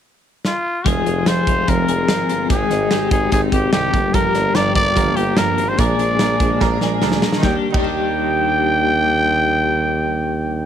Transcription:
0.45 F4, snare
0.86 F1 F3 G#3 C4 F4 G#4, kick, closed hi-hat
1.06 F1 G#3 C4 F4, closed hi-hat
1.26 F1 F3 G#3 C4 F4 G#4 C5, snare, closed hi-hat
1.47 F1 G#3 C4 F4, kick, closed hi-hat
1.68 F1 F3 G#3 C4 F4 A#4, kick, closed hi-hat
1.88 F1 G#3 C4 F4 G#4, closed hi-hat
2.08 G#1 F3 G#3 C4 F4, snare, closed hi-hat
2.29 G1 G#3 C4 F4, closed hi-hat
2.50 G#1 G#2 D#3 G3 G#3 C4 D#4 G#4, kick, closed hi-hat
2.70 G#1 G3 C4 D#4, snare, closed hi-hat
2.91 G#1 G#2 D#3 G3 C4 D#4 G4, snare, closed hi-hat
3.11 G#1 G3 C4 D#4 G#4, kick, closed hi-hat
3.32 G#1 D#3 G3 C4 D#4 G#4, kick, closed hi-hat
3.52 G#1 G3 C4 D#4 G4, kick, closed hi-hat
3.72 C2 G#2 D#3 G3 C4 D#4 G4, snare, closed hi-hat
3.93 G1 G2 F3 A#3 D4, kick, closed hi-hat
4.13 G2 D3 F3 A#3 D4 F4 G4 A#4, kick, closed hi-hat
4.34 G1 F3 A#3 D4, snare, closed hi-hat
4.54 G1 G2 D3 F3 A#3 D4 F4 G4 A#4 D5, snare, closed hi-hat
4.75 G1 F3 A#3 D4 D5, kick, closed hi-hat
4.95 G1 D3 F3 A#3 D4 F4 G4 A#4, kick, closed hi-hat
5.16 G1 F3 A#3 D4 G4, closed hi-hat
5.37 G1 G2 D3 F3 A#3 D4 F4 G4 A#4, snare, closed hi-hat
5.58 G#1 F3 A#3 D4, closed hi-hat
5.69 C5
5.78 A#1 A#2 F3 G#3 D4 G#4 A#4 D5, kick, closed hi-hat
5.99 A#1 F3 G#3 D4, closed hi-hat
6.19 A#1 A#2 F3 G#3 D4 G#4 A#4, snare, closed hi-hat
6.40 A#1 F3 G#3 D4, kick, closed hi-hat
6.60 A#1 A#2 F3 G#3 A#3 D4 G#4 A#4, kick, snare
6.81 A#1 F3 G#3 D4 G#4, snare
7.02 D2 A#2 F3 G#3 D4 G#4 A#4, snare
7.12 snare
7.22 F3 G#3 A#3 D4, snare
7.33 snare
7.40 D#2 D#3 G3 D#4 G4 G5, kick, snare
7.45 A#3 D5
7.53 D4 G4
7.70 D#2 D#3 D#4 G4, kick, crash
7.74 G3 D5 G5
7.80 A#3
7.84 D4 G4

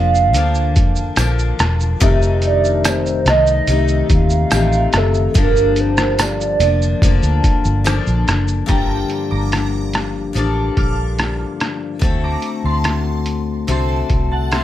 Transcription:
Already playing: F1 F3 A#3 D4 F5
0.15 shaker
0.33 D2 D3 F3 A#3 D4, closed hi-hat, shaker
0.54 shaker
0.76 F2, kick, closed hi-hat, shaker
0.96 shaker
1.16 A#1 D3 F3 A#3 D4, cross-stick, closed hi-hat, tambourine, shaker
1.39 shaker
1.59 E1, cross-stick, closed hi-hat, shaker
1.80 shaker
2.00 F1 F2 C3 D#3 A3 D#4, kick, closed hi-hat, shaker
2.22 shaker
2.42 closed hi-hat, shaker
2.46 D5
2.64 shaker
2.85 cross-stick, closed hi-hat, tambourine, shaker
2.89 C5
3.06 shaker
3.26 C2 D#3 A3 D#4 D#5, cross-stick, closed hi-hat, shaker
3.47 shaker
3.67 C2 C3 D#3 A3 D#4, closed hi-hat, shaker
3.88 shaker
4.10 D#2, kick, closed hi-hat, shaker
4.14 F5
4.30 shaker
4.51 A1 C3 D#3 A3, cross-stick, closed hi-hat, tambourine, shaker
4.55 D#4
4.72 shaker
4.93 F#1, cross-stick, closed hi-hat, shaker
4.97 A4
5.14 shaker
5.34 G1 G2 D3 F3 A#3 D4, kick, closed hi-hat, shaker
5.40 A#4
5.56 shaker
5.76 closed hi-hat, shaker
5.80 C5
5.97 cross-stick, shaker
6.19 D5, cross-stick, closed hi-hat, tambourine, shaker
6.41 shaker
6.60 F1 F3 A#3 D4, closed hi-hat, shaker
6.82 shaker
7.02 F1 D3 F3 A#3 D4, kick, closed hi-hat, shaker
7.23 D2, shaker
7.44 kick, closed hi-hat, shaker
7.65 G1, shaker
7.84 D3 F3 A#3 D4, cross-stick, closed hi-hat, tambourine, shaker
8.07 A#1, shaker
8.28 F#1, cross-stick, closed hi-hat, shaker
8.48 shaker
8.66 G1 G2 D3 F3 A#3 A#5, kick, closed hi-hat
8.70 D4 G5
9.10 closed hi-hat
9.31 G1 A#5 D6
9.52 cross-stick, closed hi-hat
9.93 cross-stick, closed hi-hat
10.33 A1 G2 D3 F3 A#3, closed hi-hat
10.37 D4 A4
10.77 A#1 D6 F6, kick, closed hi-hat
11.19 cross-stick, closed hi-hat
11.60 cross-stick, closed hi-hat
11.99 D2 D3 A3 C4, kick, closed hi-hat
12.03 F#4 A4
12.24 A#5 D6
12.42 closed hi-hat
12.64 D2 A5 C6
12.84 cross-stick, closed hi-hat
13.26 closed hi-hat
13.67 C2 D3 A3 C4 F#4 A4 A5 C6, closed hi-hat
14.10 C2, kick, closed hi-hat
14.32 F#5 A5
14.51 A3 C4 F#4 A4 A5 C6, cross-stick, closed hi-hat

